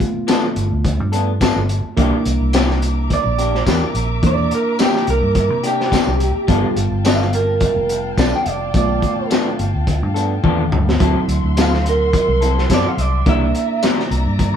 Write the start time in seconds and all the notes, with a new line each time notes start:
Already playing: A3 B3 F4
0.00 kick, closed hi-hat
0.27 F3 B3 D4 A4, snare, closed hi-hat, tambourine
0.56 G1, closed hi-hat
0.72 D2
0.85 kick, closed hi-hat
1.00 G2
1.12 B3 D4 A4, closed hi-hat
1.41 F3 B3 D4 A4, kick, snare, closed hi-hat, tambourine
1.56 G1
1.69 closed hi-hat
1.97 C2 E3 A#3 D4 E4 G4 E5 A#5 D6, kick, closed hi-hat
2.26 C2, closed hi-hat
2.41 C2
2.53 E3 A#3 D4 G4, snare, closed hi-hat, tambourine
2.70 snare
2.82 closed hi-hat
3.10 D5, kick, closed hi-hat
3.25 A#1
3.38 A#3 D4 G4, closed hi-hat
3.55 snare
3.66 E2 E3 A#3 D4 G4 A#4, kick, snare, closed hi-hat, tambourine
3.94 A#1, closed hi-hat
4.23 E2 A#3 D4 E4 D5, kick, closed hi-hat
4.51 A#4, closed hi-hat
4.79 E3 A#3 D4 G4, snare, closed hi-hat, tambourine
4.96 snare
5.07 C2 A#4, closed hi-hat
5.22 G2
5.35 kick, closed hi-hat
5.50 C3
5.63 A#3 D4 G4, closed hi-hat
5.81 snare
5.91 E3 A#3 D4 G4, kick, snare, closed hi-hat, tambourine
6.07 C2
6.20 closed hi-hat
6.35 muted fingered electric bass stroke
6.47 G1 F3 G3 B3 D4 F4 A4 F5 G5 A5, kick, closed hi-hat
6.76 G1, closed hi-hat
6.91 G1
7.04 F3 B3 D4 A4 F5, snare, closed hi-hat, tambourine
7.22 snare
7.33 A#4, closed hi-hat
7.61 kick, closed hi-hat
7.76 F1
7.89 closed hi-hat
8.17 B1 F3 B3 D4 A4 D5, kick, snare, closed hi-hat, tambourine
8.36 G5
8.46 F1 D5, closed hi-hat
8.74 B1 A3 B3 F4 D5, kick, closed hi-hat
9.02 kick, closed hi-hat
9.30 F3 B3 D4 A4, snare, closed hi-hat, tambourine
9.59 G1, closed hi-hat
9.74 D2
9.87 kick, closed hi-hat
10.03 G2
10.14 B3 D4 A4, closed hi-hat
10.44 E2 F3 B3 D4 A4, kick, high tom
10.72 D2, mid tom
10.89 snare
11.00 D2 F#3 C4 E4 A4 E5 F#5 C6, kick, closed hi-hat
11.28 D2, closed hi-hat
11.44 D2
11.57 F#3 C4 E4 A4, snare, closed hi-hat, tambourine
11.61 F5
11.74 snare
11.86 A#4, closed hi-hat
12.13 kick, closed hi-hat
12.28 C2
12.41 C4 E4 A4, closed hi-hat
12.58 snare
12.70 F#2 F#3 C4 E4 A4, kick, snare, closed hi-hat, tambourine
12.74 D5
12.88 F5
12.97 C2, closed hi-hat
13.02 D5
13.26 C2 G3 A#3 D4 E4 A#4 D5 E5 A#5, kick, closed hi-hat
13.55 closed hi-hat
13.83 G3 D4 E4 A#4, snare, closed hi-hat, tambourine
14.00 snare
14.11 C2, closed hi-hat
14.26 G2
14.39 kick, closed hi-hat